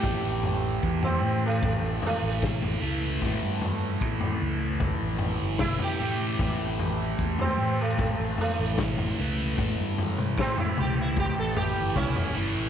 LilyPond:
<<
  \new Staff \with { instrumentName = "Sitar" } { \time 4/4 \tempo 4 = 76 g'4~ g'16 c'8 a8. a8 r4 | r2. e'16 g'8.~ | g'4~ g'16 c'8 a8. a8 r4 | r4 c'16 e'16 g'16 e'16 g'16 a'16 g'8 <cis' e'>8 r8 | }
  \new Staff \with { instrumentName = "Distorted electric guitar" } { \clef bass \time 4/4 <a, e a>2.~ <a, e a>8 <a, e a>8 | <a, e a>2.~ <a, e a>8 <a, e a>8 | <a, e a>2.~ <a, e a>8 <a, e a>8 | <a, e a>2.~ <a, e a>8 <a, e a>8 | }
  \new Staff \with { instrumentName = "Fingered electric bass" } { \clef bass \time 4/4 a,,16 a,,8. e,8 a,8. a,,16 r16 a,,8. cis,8 | a,16 g,8. a,8 cis,8. a,,8 g,,8 r16 a,8 | a,,16 a,,8. e,8 a,8. a,,16 r16 a,,8. cis,8 | a,16 g,8. a,8 cis,8. a,,8 g,,16 cis,16 e,,16 g,,16 a,,16 | }
  \new DrumStaff \with { instrumentName = "Drums" } \drummode { \time 4/4 <bd tomfh>8 tomfh8 bd16 tomfh8. <bd tomfh>8 tomfh8 <bd sn toml>16 tomfh8. | <bd tomfh>8 tomfh8 bd16 tomfh8. <bd tomfh>8 tomfh8 <bd sn toml>16 tomfh8. | <bd tomfh>8 tomfh8 bd16 tomfh8. <bd tomfh>8 tomfh8 <bd sn toml>16 tomfh8. | <bd tomfh>8 tomfh16 toml16 <bd sn>16 tomfh16 toml8 <bd tomfh>8 tomfh8 <bd toml>16 tomfh8. | }
>>